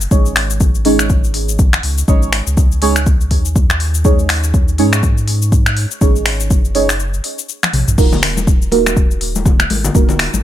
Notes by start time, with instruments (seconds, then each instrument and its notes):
0.01 cabasa
0.11 sub bass G#1, synth stab G#3 C#4 D#4 G#4 C#5, kick, cabasa
0.26 cabasa
0.36 finger snap, open hi-hat
0.50 cabasa
0.60 kick, cabasa
0.75 cabasa
0.85 synth stab G#3 C#4 D#4 G#4 C#5, open hi-hat
0.99 finger snap, cabasa
1.10 kick, cabasa
1.24 cabasa
1.34 open hi-hat
1.49 cabasa
1.59 kick, cabasa
1.73 finger snap, cabasa
1.83 sub bass C#2, open hi-hat
1.98 cabasa
2.08 sub bass G#1, synth stab G#3 C#4 D#4 G#4 C#5, kick, cabasa
2.22 cabasa
2.33 finger snap, open hi-hat
2.47 sub bass C#2, cabasa
2.57 kick, cabasa
2.72 cabasa
2.82 synth stab G#3 C#4 D#4 G#4 C#5, open hi-hat
2.96 finger snap, cabasa
3.06 kick, cabasa
3.21 cabasa
3.31 sub bass D#2, kick, open hi-hat
3.45 cabasa
3.56 kick, cabasa
3.70 finger snap, cabasa
3.80 open hi-hat
3.94 cabasa
4.05 synth stab G#3 C#4 D#4 G#4 C#5, kick, cabasa
4.19 cabasa
4.29 finger snap, open hi-hat
4.44 cabasa
4.54 kick, cabasa
4.68 cabasa
4.78 sub bass G#2, synth stab G#3 C#4 D#4 G#4 C#5, open hi-hat
4.93 finger snap, cabasa
5.03 kick, cabasa
5.18 cabasa
5.28 open hi-hat
5.42 cabasa
5.52 kick, cabasa
5.66 finger snap, cabasa
5.77 open hi-hat
5.91 cabasa
6.01 sub bass G#1, synth stab G#3 C#4 D#4 G#4 C#5, kick, cabasa
6.16 cabasa
6.26 finger snap, open hi-hat
6.40 cabasa
6.51 sub bass F#1, kick, cabasa
6.65 cabasa
6.75 synth stab G#3 C#4 D#4 G#4 C#5, open hi-hat
6.89 finger snap, open hi-hat, cabasa
7.00 cabasa
7.14 cabasa
7.24 open hi-hat
7.38 cabasa
7.49 cabasa
7.63 finger snap, high tom, cabasa
7.73 sub bass A#1, open hi-hat, mid tom
7.88 sub bass A#1, mid tom, cabasa
7.98 sub bass D#1, synth stab A#3 D#4 F4 F#4 A#4, kick, crash, high conga, cabasa
8.12 muted conga, low conga, cabasa
8.23 finger snap, open hi-hat
8.37 high conga, cabasa
8.47 kick, muted conga, cabasa
8.62 cabasa
8.72 synth stab A#3 D#4 F4 F#4 A#4, open hi-hat, muted conga
8.86 finger snap, high conga, cabasa
8.96 kick, muted conga, cabasa
9.11 cabasa
9.21 open hi-hat
9.35 muted conga, high conga, cabasa
9.45 kick, low conga, cabasa
9.59 finger snap, muted conga, cabasa
9.70 sub bass G#1, open hi-hat, high conga
9.84 muted conga, low conga, cabasa
9.95 sub bass D#1, synth stab A#3 D#4 F4 F#4 A#4, kick, high conga, cabasa
10.09 muted conga, low conga, cabasa
10.19 finger snap, open hi-hat
10.34 sub bass G#1, high conga, cabasa